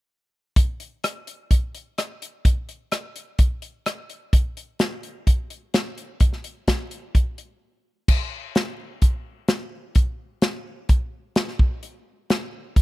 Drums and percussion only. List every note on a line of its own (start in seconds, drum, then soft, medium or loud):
0.56 kick medium
0.56 closed hi-hat medium
0.80 closed hi-hat soft
1.04 cross-stick medium
1.04 closed hi-hat medium
1.27 closed hi-hat medium
1.51 kick medium
1.51 closed hi-hat medium
1.75 closed hi-hat medium
1.98 cross-stick medium
1.98 closed hi-hat medium
2.22 closed hi-hat medium
2.45 kick medium
2.45 closed hi-hat medium
2.69 closed hi-hat soft
2.92 cross-stick medium
2.92 closed hi-hat medium
3.16 closed hi-hat soft
3.39 kick medium
3.39 closed hi-hat medium
3.62 closed hi-hat soft
3.86 cross-stick medium
3.86 closed hi-hat medium
4.10 closed hi-hat soft
4.33 kick medium
4.33 closed hi-hat medium
4.57 closed hi-hat soft
4.79 snare medium
4.79 closed hi-hat medium
5.03 closed hi-hat medium
5.27 kick medium
5.27 closed hi-hat medium
5.50 closed hi-hat medium
5.74 snare medium
5.74 closed hi-hat medium
5.98 closed hi-hat medium
6.20 kick medium
6.20 closed hi-hat medium
6.33 snare soft
6.44 closed hi-hat medium
6.68 kick medium
6.68 snare medium
6.68 closed hi-hat medium
6.91 closed hi-hat medium
7.15 kick medium
7.15 closed hi-hat medium
7.38 closed hi-hat soft
8.08 kick medium
8.08 crash medium
8.55 snare loud
8.55 closed hi-hat medium
9.02 kick medium
9.02 closed hi-hat medium
9.48 snare medium
9.48 closed hi-hat medium
9.95 kick medium
9.95 closed hi-hat medium
10.42 snare loud
10.42 closed hi-hat medium
10.89 kick medium
10.89 closed hi-hat medium
11.36 snare loud
11.36 closed hi-hat medium
11.48 snare soft
11.59 kick medium
11.83 closed hi-hat medium
12.30 snare loud
12.30 closed hi-hat medium
12.76 kick medium
12.76 closed hi-hat medium